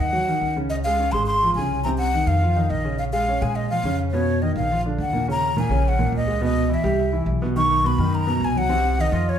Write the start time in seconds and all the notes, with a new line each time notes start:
0.00 D#2 F#5
0.13 F#3 F#4
0.28 D#3 D#4
0.41 C#2
0.57 C#3 C#4
0.70 D#5
0.84 G#3 G#4 F5
0.99 C#4 C#5
1.12 G#1 G#3 G#4 C6
1.26 C6
1.43 F3 F4
1.55 C2 C#3 C#4 G#5
1.84 C3 C4 A#5
1.98 F#5
2.14 D#3 D#4
2.27 F2 F5
2.42 F3 F4
2.56 D#3 D#4
2.70 A#1 D#5
2.84 C#3 C#4
2.98 F5
3.12 G#3 G#4 F5
3.28 C#4 C#5
3.42 A#2 G#3 G#4 G#5
3.56 D#5
3.69 F3 F4 F5
3.84 F2 C#3 C#4
4.11 B2 B3 C#5
4.42 D#3 D#4 D#5
4.56 A#1 F5
4.71 F3 F4
4.85 D3 D4
4.98 D#2 F#5
5.13 A#2 A#3
5.28 C#3 C#4 A#5
5.56 A#2 A#3 G#5
5.69 A#1 C#3 C#4
5.88 F#5
5.99 A#2 A#3
6.12 C#2
6.16 D#5
6.27 G#3 G#4
6.41 B2 B3 D#5
6.69 E3 E4
6.74 E5
6.84 C2 G3 G4
7.12 E3 E4
7.26 B1
7.42 B2 B3
7.56 D#3 D#4 C#6
7.84 B2 B3 B5
7.98 F#2 D#3 D#4
8.15 A#5
8.27 B2 B3
8.41 C2 G#5
8.56 F#3 F#4 F#5
8.69 C3 C4
8.98 D#3 D#4 D#5
9.12 F2 F3 F4
9.29 C#5